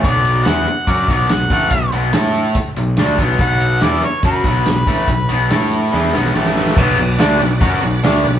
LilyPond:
<<
  \new Staff \with { instrumentName = "Harmonica" } { \time 4/4 \key b \minor \tempo 4 = 142 d''4 fis''4 d''8 d''8 fis''8 fis''8~ | fis''8 r2. r8 | fis''4 d''8 cis''8 b'2~ | b'2. r4 |
r1 | }
  \new Staff \with { instrumentName = "Tonewheel organ" } { \time 4/4 \key b \minor << { r1 | r1 | r1 | r1 |
<d' fis' b' d''>1 | } \\ { r1 | r1 | r1 | r1 |
<g a b c' d' e' eis' g' a' b' c''>8 r2. r8 | } >> }
  \new Staff \with { instrumentName = "Overdriven electric guitar" } { \clef bass \time 4/4 \key b \minor <b, fis b>4 <e b e'>8 r8 <fis cis' fis'>8 <b, fis b>8 <b, fis>8 <a, e a>8 | <b, fis>8 <b, fis b>8 <a e' a'>4 r8 <b, fis>8 <d a d'>8 <b, fis b>8 | <b, fis b>4 <e b e'>8 r8 <fis cis' fis'>8 <b, fis b>8 <b, fis>8 <a, e a>8 | <b, fis>8 <b, fis b>8 <a e' a'>4 <e b e'>8 <b, fis b>8 <a, e a>4 |
<b, fis b>8 <b, fis>8 <d a d'>8 <b, fis>8 <fis cis' fis'>8 <b, fis>8 <d a d'>8 <b, fis>8 | }
  \new Staff \with { instrumentName = "Fingered electric bass" } { \clef bass \time 4/4 \key b \minor b,,4 e,8 r8 fis,8 b,,8 b,,8 a,,8 | b,,8 b,,8 a,4 r8 b,,8 d,8 b,,8 | b,,4 e,8 r8 fis,8 b,,8 b,,8 a,,8 | b,,8 b,,8 a,4 e,8 b,,8 a,,4 |
b,,8 b,,8 d,8 b,,8 fis,8 b,,8 d,8 b,,8 | }
  \new DrumStaff \with { instrumentName = "Drums" } \drummode { \time 4/4 <hh bd>8 hh8 <hh sn>8 hh8 <hh bd>8 <hh bd>8 <hh sn>8 <hh bd>8 | <hh bd>8 hh8 <hh sn>8 hh8 <hh bd>8 hh8 <hh sn>8 <hh bd>16 sn16 | <hh bd>8 hh8 <hh sn>8 hh8 <hh bd>8 <hh bd>8 <hh sn>8 <hh bd>8 | <hh bd>8 hh8 <hh sn>8 hh8 sn16 sn16 sn16 sn16 sn16 sn16 sn16 sn16 |
<cymc bd>8 hho8 <hho sn>8 <hho sn>8 <hho bd>8 hho8 <hho sn>8 hho8 | }
>>